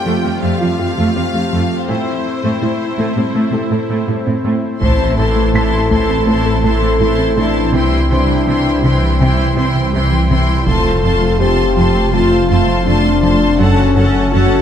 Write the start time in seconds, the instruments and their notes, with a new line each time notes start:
Already playing: analog synth pad A3 C4 F4 G4, viola section F4, felt piano D5, violin section G5
0.06 cello section F2, synth arpeggio sound F3, viola section A3
0.24 cello section F2, viola section G3, synth arpeggio sound A3
0.42 cello section F2, synth arpeggio sound F3, viola section A3, violin section F5
0.61 cello section F2, viola section G3, synth arpeggio sound F4
0.79 cello section F2, viola section A3, synth arpeggio sound F4
0.97 cello section F2, synth arpeggio sound F3, viola section A3
1.16 cello section F2, viola section G3, synth arpeggio sound C4
1.34 cello section F2, viola section A3, synth arpeggio sound A3
1.52 cello section F2, synth arpeggio sound F3, viola section A3
1.88 cello section A2, viola section A3 E4, synth arpeggio sound A3, analog synth pad E4 C5, violin section C5, felt piano G5
2.43 cello section A2, viola section A3, synth arpeggio sound A3
2.62 cello section A2, viola section G3, synth arpeggio sound E4
2.98 cello section A2, viola section A3, synth arpeggio sound A3
3.17 cello section A2, viola section G3, synth arpeggio sound C4
3.35 cello section A2, viola section A3, synth arpeggio sound A3
3.53 cello section A2, viola section G3, synth arpeggio sound A4
3.71 cello section A2, viola section A3, synth arpeggio sound A4
3.89 cello section A2, viola section A3, synth arpeggio sound A3
4.07 cello section A2, viola section G3, synth arpeggio sound E4
4.26 cello section A2, viola section A3, synth arpeggio sound C4
4.44 cello section A2, viola section A3, synth arpeggio sound A3
4.81 detuned saw bass A1, cello section A2, viola section E3 E4, analog synth pad A3 C4 E4 C5, synth arpeggio sound A3, french horn section C5, violin section A5 C6, taiko
5.17 cello section A2, viola section E3 E4, french horn section A4, violin section A5 C6
5.36 synth arpeggio sound A3
5.54 cello section A2, viola section E3 E4, synth arpeggio sound E4, violin section A5 C6, felt piano B6
5.91 cello section A2, viola section E3 E4, synth arpeggio sound A3, violin section A5 C6, taiko
6.10 synth arpeggio sound C4
6.27 cello section A2, viola section E3 E4, synth arpeggio sound A3, french horn section A4, violin section A5 C6
6.46 synth arpeggio sound A4
6.64 cello section A2, viola section E3 E4, synth arpeggio sound A4, violin section A5 C6
6.82 synth arpeggio sound A3
7.00 cello section A2, viola section E3 E4, synth arpeggio sound E4, violin section A5 C6
7.19 synth arpeggio sound C4
7.37 cello section A2, viola section E3 E4, synth arpeggio sound A3, french horn section D4, violin section A5 C6
7.73 detuned saw bass C2, cello section C3, synth arpeggio sound C3, viola section E3 E4, analog synth pad G3, french horn section E4, violin section G5 C6
8.10 cello section C3, viola section E3 E4, french horn section D4, felt piano C5 C6, violin section G5 C6
8.29 synth arpeggio sound C3
8.47 cello section C3, viola section E3 E4, synth arpeggio sound G3, violin section G5 C6
8.83 cello section C3, synth arpeggio sound C3, viola section E3 E4, french horn section C4, violin section G5 C6
9.02 synth arpeggio sound E3
9.20 cello section C3, synth arpeggio sound C3, viola section E3 E4, felt piano G5, violin section G5 C6
9.39 synth arpeggio sound C4
9.57 cello section C3, viola section E3 E4, synth arpeggio sound C4, violin section G5 C6
9.75 synth arpeggio sound C3
9.93 cello section C3, viola section E3 E4, synth arpeggio sound G3, violin section G5 C6
10.12 synth arpeggio sound E3
10.30 cello section C3, synth arpeggio sound C3, viola section E3 E4, violin section G5 C6
10.66 detuned saw bass F1, cello section F2, synth arpeggio sound F3, viola section A3 F4, analog synth pad A3 C4 F4 C5, french horn section A4, violin section A5 C6, taiko
11.03 cello section F2, viola section A3 F4, violin section A5 C6
11.22 synth arpeggio sound F3
11.39 cello section F2, viola section A3 F4, synth arpeggio sound C4, felt piano C4 C5, french horn section G4, violin section A5 C6
11.76 cello section F2, synth arpeggio sound F3, viola section A3 F4, violin section A5 C6
11.95 synth arpeggio sound A3
12.13 cello section F2, synth arpeggio sound F3, viola section A3 F4, french horn section F4, violin section A5 C6
12.31 synth arpeggio sound F4
12.49 cello section F2, viola section A3 F4, synth arpeggio sound F4, violin section A5 C6
12.68 synth arpeggio sound F3
12.86 cello section F2, viola section A3 F4, synth arpeggio sound C4, french horn section D4, violin section A5 C6
13.05 synth arpeggio sound A3
13.23 cello section F2, synth arpeggio sound F3, viola section A3 F4, violin section A5 C6
13.59 detuned saw bass F#1, cello section F#2, synth arpeggio sound F#3, viola section C#4 A4, analog synth pad C#4 F#4 A4, french horn section C#4, violin section F#5 A5
13.95 cello section F#2, viola section C#4 A4, felt piano A4, violin section F#5 A5
14.15 synth arpeggio sound F#3
14.32 cello section F#2, viola section C#4 A4, synth arpeggio sound C#4, french horn section F#4, violin section F#5 A5